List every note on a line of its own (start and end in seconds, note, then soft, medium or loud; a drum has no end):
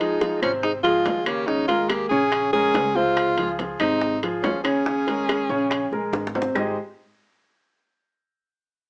0.00 0.18 F3 medium
0.00 0.42 G#3 medium
0.00 0.42 D#4 medium
0.00 0.18 F4 medium
0.00 0.18 G#4 medium
0.00 high timbale medium
0.21 0.39 F3 medium
0.21 0.39 F4 medium
0.21 0.39 G#4 medium
0.21 high bongo medium
0.21 high timbale medium
0.21 low timbale medium
0.42 1.02 G#1 medium
0.42 0.77 C3 medium
0.42 0.52 F3 medium
0.42 0.77 C4 medium
0.42 0.52 C#4 medium
0.42 0.77 C5 medium
0.42 high bongo soft
0.42 high timbale medium
0.42 claves medium
0.63 0.73 G#3 medium
0.63 0.73 D#4 medium
0.63 high bongo medium
0.83 1.19 F3 medium
0.83 1.27 G#3 medium
0.83 1.28 F4 loud
0.83 1.19 F4 medium
0.83 1.19 G#4 medium
0.83 high bongo soft
0.83 high timbale medium
1.06 2.05 D#2 loud
1.06 high bongo soft
1.06 low bongo medium
1.06 high timbale medium
1.06 low timbale medium
1.26 1.44 C#3 medium
1.26 1.48 A#3 medium
1.26 1.44 C#4 medium
1.26 1.48 G4 medium
1.26 1.44 C#5 medium
1.26 high bongo soft
1.26 high timbale medium
1.26 claves medium
1.47 1.65 C#3 medium
1.47 1.67 G#3 medium
1.47 1.65 C#4 medium
1.47 1.68 D#4 medium
1.47 1.65 C#5 medium
1.47 high bongo medium
1.68 1.91 G#3 medium
1.68 2.04 G#3 medium
1.68 1.90 F4 loud
1.68 2.04 G#4 medium
1.68 2.04 A#4 medium
1.68 high timbale medium
1.89 2.10 A#3 medium
1.89 2.08 G4 medium
1.89 high bongo medium
1.89 high timbale medium
1.89 low timbale medium
1.89 claves medium
2.09 2.71 A#1 medium
2.09 2.46 C#3 medium
2.09 2.50 C#4 medium
2.09 2.46 C#4 medium
2.09 2.49 G#4 loud
2.09 2.46 C#5 medium
2.09 high bongo soft
2.32 high bongo medium
2.32 high timbale medium
2.32 claves medium
2.52 2.88 G#3 medium
2.52 2.96 C#4 medium
2.52 2.97 G#4 loud
2.52 2.88 G#4 medium
2.52 2.88 A#4 medium
2.52 high bongo soft
2.74 3.74 C#2 medium
2.74 high bongo soft
2.74 low bongo medium
2.74 high timbale medium
2.74 low timbale medium
2.95 3.31 C3 medium
2.95 3.53 G#3 medium
2.95 3.31 C4 medium
2.95 3.53 F4 loud
2.95 3.31 C5 medium
2.95 high bongo soft
3.17 high bongo medium
3.17 high timbale medium
3.17 claves medium
3.38 3.55 F3 medium
3.38 3.56 F4 medium
3.38 3.56 G#4 medium
3.38 high timbale medium
3.59 3.77 F3 medium
3.59 3.77 F4 medium
3.59 3.77 G#4 medium
3.59 high bongo medium
3.59 high timbale medium
3.59 low timbale medium
3.79 4.40 G#1 medium
3.79 4.15 C3 medium
3.79 4.19 G#3 medium
3.79 4.16 C4 medium
3.79 4.19 D#4 loud
3.79 4.15 C5 medium
3.79 high bongo soft
3.79 high timbale medium
3.79 claves medium
4.01 high bongo medium
4.23 4.58 F3 medium
4.23 4.58 F4 medium
4.23 4.58 G#4 medium
4.23 high bongo soft
4.23 high timbale medium
4.42 5.43 D#2 medium
4.42 4.64 F3 medium
4.42 4.63 C#4 medium
4.42 high bongo soft
4.42 low bongo medium
4.42 high timbale medium
4.42 low timbale medium
4.64 4.82 C#3 medium
4.64 6.09 C#4 medium
4.64 4.82 C#4 medium
4.64 6.08 G#4 medium
4.64 4.83 C#5 medium
4.64 high bongo soft
4.64 high timbale medium
4.64 claves medium
4.86 5.03 C#3 medium
4.86 5.04 C#4 medium
4.86 5.04 C#5 medium
4.86 high bongo medium
5.07 5.42 G#3 medium
5.07 5.42 G#4 medium
5.07 5.42 A#4 medium
5.07 high timbale medium
5.29 high bongo medium
5.29 high timbale medium
5.29 low timbale soft
5.29 claves medium
5.49 5.89 A#1 medium
5.49 5.84 C#3 medium
5.49 5.84 C#4 medium
5.49 5.84 C#5 medium
5.49 high bongo soft
5.70 high bongo medium
5.70 high timbale medium
5.70 claves medium
5.92 6.11 A#1 medium
5.92 6.27 G#3 medium
5.92 6.27 G#4 medium
5.92 6.27 A#4 medium
5.92 high bongo soft
6.13 6.50 G#1 medium
6.13 high bongo medium
6.13 high timbale medium
6.27 high bongo medium
6.35 6.52 C3 medium
6.35 6.52 C4 medium
6.35 6.52 C5 medium
6.35 low timbale medium
6.42 low bongo medium
6.55 6.75 G#1 medium
6.55 6.75 G#3 medium
6.55 6.75 D#4 medium
6.55 6.75 G4 medium
6.55 6.75 G#4 medium
6.55 6.75 C5 medium
6.55 6.75 D#5 medium
6.55 low bongo medium
6.55 low timbale medium
6.55 claves medium